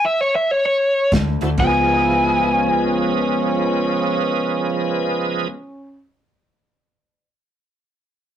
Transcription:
0.05 E5
0.21 C#5
0.36 E5
0.51 C#5
0.66 C#5
1.12 D2 D3 A3, kick, snare, closed hi-hat
1.41 D2 D3 A3 E4 F#4 A4 C5, closed hi-hat
1.57 C#2 C#3 F3 G#3 B3 G#4 B4 D#5 G#5, kick, crash
1.62 F4
1.91 E4
2.53 C#4
2.69 B3
2.84 C#4

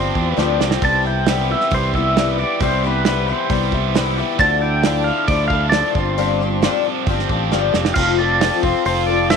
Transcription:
Already playing: G1 G2 F3 C4 D4 G4 C5
0.15 E2 F3 C4 D4 G4, kick
0.30 B4
0.37 D2 G2 D3 F3 C4 D4 G4, snare
0.60 C2 F3 C4 D4 G4, snare
0.71 snare
0.82 C2 C3 G3 B3 E4 G4 A5, kick, open hi-hat
1.05 B3 E4 G4 G5
1.26 C3 G3 B3 E4, snare, open hi-hat
1.31 G4
1.50 E3 B3 E4 G4 E5
1.61 snare
1.71 C2 G3 B3 E4 G4 C5, kick, open hi-hat
1.94 B3 E4 G4 E5, kick
2.17 C3 E3 G3 B3 E4 G4, snare, open hi-hat
2.38 G3 B3 E4 G4 D5
2.60 C2 C3 G3 B3 E4 G4 C5, kick, open hi-hat
2.84 B3 E4 G4 B4
3.05 C3 G3 B3 E4 G4, snare, open hi-hat
3.27 E3 E4 G4 C5
3.31 B3
3.50 C2 G3 B3 E4 G4, kick, open hi-hat
3.72 B3 E4 G4, kick
3.95 C3 E3 G3 B3 E4 G4, snare, open hi-hat
4.17 G3 B3 E4 G4
4.39 D2 D3 F3 D4 E4 A4 A5, kick, open hi-hat
4.61 D4 E4 A4 G5
4.83 D3 F3 D4 E4 A4, snare, open hi-hat
5.04 F3 E4 A4 F5
5.09 D4
5.28 D2 F3 A3 D4 E4 D5, kick, open hi-hat
5.32 A4
5.48 A4 F5, kick
5.53 D4 E4
5.69 D3 D5, snare, open hi-hat
5.73 F3 D4 E4 A4
5.91 G1 C5, kick
5.96 G2 F3 C4 D4 G4
6.17 G2 D3 F3 C4 D4 G4, open hi-hat
6.41 F3 C4 D4 G4
6.62 G2 D3 F3 C4 D4 G4, snare, open hi-hat
6.84 F3 C4 D4 G4
7.06 G1 F3 C4 D4, kick, open hi-hat
7.11 G4
7.19 snare
7.29 A1 F3 C4 D4 G4, kick
7.51 G1 G2 D3 F3 C4 D4 G4, snare
7.74 F1 F3 C4 D4 G4, snare
7.85 snare
7.94 F1 F3 C4 F5, kick, crash
7.98 F4 A4
8.19 C4 F4 A4 D5
8.41 F3 C4 F4 A4, snare, open hi-hat
8.63 F1 C4 F4 A4 C5, kick
8.85 F1 F3 C4 F4 A4 C5, open hi-hat
9.07 F3 F4 A4 D5
9.11 C4
9.30 F3 C4 F4 A4 E5, snare, open hi-hat

